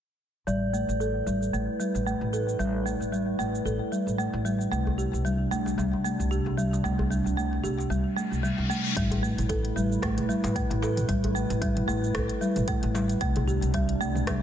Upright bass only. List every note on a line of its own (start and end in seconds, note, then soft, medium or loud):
0.47 0.84 A1 medium
0.89 1.23 A1 medium
1.27 1.49 A1 medium
1.53 1.66 A1 medium
1.95 2.16 A1 medium
2.21 2.56 A1 medium
2.59 2.96 A1 medium
3.00 3.35 A1 medium
3.39 3.61 A1 medium
3.65 3.78 A1 medium
4.07 4.28 A1 medium
4.33 4.68 A1 medium
4.72 5.09 C2 medium
5.13 5.48 C2 medium
5.51 5.74 C2 medium
5.78 5.90 C2 medium
6.20 6.41 C2 medium
6.46 6.81 C2 medium
6.84 7.21 C2 medium
7.26 7.60 C2 medium
7.64 7.86 C2 medium
7.90 8.02 C2 medium
8.32 8.53 C2 medium
8.58 8.68 C2 loud
8.96 9.34 A1 medium
9.38 9.73 A1 medium
9.76 9.98 A1 medium
10.02 10.15 A1 medium
10.44 10.65 A1 medium
10.70 11.05 A1 medium
11.09 11.46 A1 medium
11.50 11.85 A1 medium
11.88 12.11 A1 medium
12.15 12.27 A1 medium
12.57 12.78 A1 medium
12.83 13.18 A1 medium
13.21 13.58 C2 medium
13.63 13.97 C2 medium
14.01 14.23 C2 medium
14.27 14.40 C2 medium